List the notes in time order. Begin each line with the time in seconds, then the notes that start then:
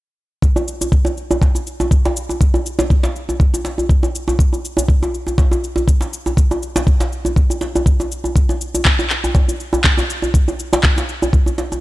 0.42 kick, shaker
0.56 djembe tone, shaker
0.68 shaker
0.81 djembe tone, shaker
0.92 kick, shaker
1.05 djembe tone, shaker
1.17 shaker
1.31 djembe tone, shaker
1.42 kick, djembe slap, shaker
1.55 djembe tone, shaker
1.67 shaker
1.80 djembe tone, shaker
1.91 kick, shaker
2.05 djembe slap, djembe tone, shaker
2.17 shaker
2.29 djembe tone, shaker
2.41 kick, shaker
2.54 djembe tone, shaker
2.66 shaker
2.79 djembe slap, djembe tone, shaker
2.90 kick, shaker
3.03 djembe slap, djembe tone, shaker
3.16 shaker
3.29 djembe tone, shaker
3.40 kick, shaker
3.54 djembe tone, shaker
3.65 djembe slap, shaker
3.78 djembe tone, shaker
3.89 kick, shaker
4.03 djembe tone, shaker
4.15 shaker
4.28 djembe tone, shaker
4.39 kick, shaker
4.53 djembe tone, shaker
4.65 shaker
4.77 djembe tone, shaker
4.88 kick, shaker
5.03 djembe tone, shaker
5.14 shaker
5.27 djembe tone, shaker
5.38 kick, djembe slap, shaker
5.51 djembe tone, shaker
5.64 shaker
5.76 djembe tone, shaker
5.88 kick, shaker
6.01 djembe slap, djembe tone, shaker
6.13 shaker
6.26 djembe tone, shaker
6.37 kick, shaker
6.51 djembe tone, shaker
6.63 shaker
6.76 djembe slap, djembe tone, shaker
6.87 kick, shaker
7.00 djembe slap, djembe tone, shaker
7.12 shaker
7.25 djembe tone, shaker
7.36 kick, shaker
7.50 djembe tone, shaker
7.61 djembe slap, shaker
7.75 djembe tone, shaker
7.86 kick, shaker
8.00 djembe tone, shaker
8.12 shaker
8.24 djembe tone, shaker
8.36 kick, shaker
8.49 djembe tone, shaker
8.61 shaker
8.75 djembe tone, shaker
8.85 kick, clap, shaker
8.99 djembe tone, shaker
9.10 clap, shaker
9.24 djembe tone, shaker
9.35 kick, djembe slap, shaker
9.48 djembe tone, shaker
9.60 shaker
9.73 djembe tone, shaker
9.84 kick, clap, shaker
9.97 djembe slap, djembe tone, shaker
10.10 shaker
10.22 djembe tone, shaker
10.34 kick, shaker
10.48 djembe tone, shaker
10.59 shaker
10.73 djembe slap, djembe tone, shaker
10.83 kick, clap, shaker
10.96 djembe slap, djembe tone, shaker
11.09 shaker
11.22 djembe tone, shaker
11.33 kick, shaker
11.46 djembe tone, shaker
11.58 djembe slap, shaker
11.72 djembe tone, shaker